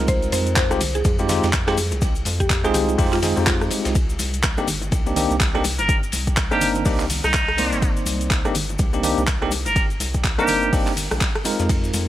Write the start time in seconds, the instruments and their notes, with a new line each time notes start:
Already playing: tine electric piano G#3 C4 D#4 F4 A#4
0.00 analog synth bass C2
0.08 synth pluck C5, kick, closed hi-hat, ride, cabasa
0.22 closed hi-hat, cabasa
0.32 analog synth bass F2, synth pluck C5, open hi-hat, ride, high bongo, high conga, cabasa
0.47 closed hi-hat, cabasa
0.56 synth pluck C5, kick, snare, clap, closed hi-hat, ride, cabasa
0.70 analog synth bass C2, tine electric piano G#3 C4 D#4 F4 G4, cross-stick, closed hi-hat, high conga, cabasa
0.81 open hi-hat, ride, low conga, cabasa
0.95 synth pluck G#4, closed hi-hat, high bongo, cabasa
1.05 analog synth bass F2, kick, closed hi-hat, ride, high conga, cabasa
1.19 tine electric piano G#3 C4 D#4 F4 G4, closed hi-hat, cabasa
1.29 tine electric piano G#3 C4 D#4 F4 G4, snare, open hi-hat, ride, low conga, cabasa
1.43 analog synth bass F2, snare, closed hi-hat, ride, high conga, cabasa
1.53 kick, snare, clap, closed hi-hat, ride, cabasa
1.67 tine electric piano G#3 C4 D#4 F4 G4, synth pluck G#4, cross-stick, snare, closed hi-hat, ride, high bongo
1.77 open hi-hat, ride, high conga, cabasa
1.91 analog synth bass C2, closed hi-hat, ride, high bongo, cabasa
2.01 kick, closed hi-hat, ride, cabasa
2.15 closed hi-hat, cabasa
2.25 analog synth bass F2, open hi-hat, ride, high bongo, high conga, cabasa
2.40 synth pluck G4, kick, closed hi-hat, ride, cabasa
2.50 kick, snare, clap, closed hi-hat, ride, cabasa
2.64 analog synth bass C2, tine electric piano G#3 C4 D#4 F4 G#4, cross-stick, closed hi-hat, ride, high conga, cabasa
2.74 synth pluck G4, open hi-hat, ride, low conga, cabasa
2.88 closed hi-hat, high bongo, cabasa
2.98 analog synth bass F2, tine electric piano G#3 C4 D#4 F4 G4, kick, closed hi-hat, open hi-hat, high conga, cabasa
3.12 synth pluck F4, clap, closed hi-hat, ride, cabasa
3.22 tine electric piano G#3 C4 D#4 F4 G#4, snare, open hi-hat, ride, low conga, cabasa
3.36 analog synth bass F2, tine electric piano G#3 C4 D#4 F4 G4, closed hi-hat, high conga, cabasa
3.47 synth pluck F4, kick, snare, clap, closed hi-hat, ride, cabasa
3.61 cross-stick, closed hi-hat, cabasa
3.70 open hi-hat, ride, high bongo, high conga, cabasa
3.85 analog synth bass C2, snare, closed hi-hat, ride, cabasa
3.95 kick, closed hi-hat, ride, cabasa
4.09 closed hi-hat, cabasa
4.19 analog synth bass C2, open hi-hat, ride, high bongo, high conga, cabasa
4.34 closed hi-hat, cabasa
4.43 kick, snare, clap, closed hi-hat, ride, cabasa
4.58 analog synth bass G1, tine electric piano A#3 C4 D4 D#4 G4, cross-stick, closed hi-hat, high conga, cabasa
4.68 open hi-hat, ride, low conga, cabasa
4.82 closed hi-hat, high bongo, cabasa
4.91 analog synth bass C2, kick, closed hi-hat, ride, high conga, cabasa
5.06 tine electric piano A#3 C4 D4 D#4 G4, closed hi-hat, cabasa
5.16 tine electric piano A#3 C4 D4 D#4 G4, open hi-hat, ride, low conga, cabasa
5.30 analog synth bass C2, closed hi-hat, high conga, cabasa
5.40 kick, snare, clap, closed hi-hat, ride, cabasa
5.54 tine electric piano A#3 C4 D4 D#4 G4, cross-stick, closed hi-hat, high bongo
5.64 open hi-hat, ride, high conga, cabasa
5.78 analog synth bass G1, muted trumpet A#4, closed hi-hat, high bongo, cabasa
5.89 kick, closed hi-hat, ride, cabasa
6.03 closed hi-hat, cabasa
6.12 analog synth bass C2, open hi-hat, ride, high bongo, high conga, cabasa
6.27 kick, closed hi-hat, ride, cabasa
6.37 kick, snare, clap, closed hi-hat, ride, cabasa
6.51 analog synth bass G1, tine electric piano A#3 C4 D4 D#4 A#4, muted trumpet G4, cross-stick, closed hi-hat, ride, high conga, cabasa
6.61 open hi-hat, ride, low conga, cabasa
6.75 closed hi-hat, high bongo, cabasa
6.85 analog synth bass C2, tine electric piano A#3 C4 D4 D#4 G4, kick, closed hi-hat, open hi-hat, high conga, cabasa
6.99 clap, closed hi-hat, ride, cabasa
7.10 open hi-hat, ride, low conga, cabasa
7.24 analog synth bass C2, muted trumpet D#4, cross-stick, closed hi-hat, high conga, cabasa
7.34 kick, snare, clap, closed hi-hat, ride, cabasa
7.48 cross-stick, closed hi-hat
7.57 tine electric piano A#3 C4 D#4 C5 D5, open hi-hat, ride, high bongo, high conga, cabasa
7.73 analog synth bass G1, snare, closed hi-hat, cabasa
7.82 kick, closed hi-hat, ride, cabasa
7.97 closed hi-hat, cabasa
8.06 analog synth bass C2, open hi-hat, ride, high bongo, high conga, cabasa
8.21 closed hi-hat, cabasa
8.30 kick, snare, clap, closed hi-hat, ride, cabasa
8.45 analog synth bass G1, tine electric piano A#3 C4 D4 D#4 G4, cross-stick, closed hi-hat, high conga, cabasa
8.55 open hi-hat, ride, low conga, cabasa
8.69 closed hi-hat, high bongo, cabasa
8.79 analog synth bass C2, kick, closed hi-hat, ride, high conga, cabasa
8.93 tine electric piano A#3 C4 D4 D#4 G4, closed hi-hat, cabasa
9.03 tine electric piano A#3 C4 D4 D#4 G4, open hi-hat, ride, low conga, cabasa
9.18 analog synth bass C2, high conga, cabasa
9.27 kick, snare, clap, closed hi-hat, ride, cabasa
9.42 tine electric piano A#3 C4 D4 D#4 G4, cross-stick, closed hi-hat, high bongo
9.51 open hi-hat, ride, high conga, cabasa
9.66 analog synth bass G1, muted trumpet A#4, closed hi-hat, ride, high bongo, cabasa
9.76 kick, closed hi-hat, ride, cabasa
9.90 closed hi-hat, cabasa
10.00 analog synth bass C2, open hi-hat, ride, high bongo, high conga, cabasa
10.14 kick, closed hi-hat, ride, cabasa
10.24 kick, snare, clap, closed hi-hat, ride, cabasa
10.38 analog synth bass G1, tine electric piano A#3 C4 D4 D#4 A#4, muted trumpet G4, cross-stick, closed hi-hat, ride, high conga, cabasa
10.47 open hi-hat, ride, low conga, cabasa
10.62 closed hi-hat, high bongo, cabasa
10.72 analog synth bass G1, tine electric piano A#3 C4 D4 D#4 G4, kick, closed hi-hat, open hi-hat, high conga, cabasa
10.86 clap, closed hi-hat, ride, cabasa
10.97 open hi-hat, ride, low conga, cabasa
11.11 analog synth bass A#1, cross-stick, closed hi-hat, high conga, cabasa
11.21 kick, snare, clap, closed hi-hat, ride, cabasa
11.35 cross-stick, closed hi-hat
11.44 tine electric piano G#3 C4 D#4 F4 A#4, open hi-hat, ride, high bongo, high conga, cabasa
11.59 analog synth bass F2, snare, closed hi-hat, cabasa
11.69 kick, closed hi-hat, ride, cabasa
11.84 closed hi-hat, cabasa
11.94 analog synth bass F2, open hi-hat, ride, high bongo, high conga, cabasa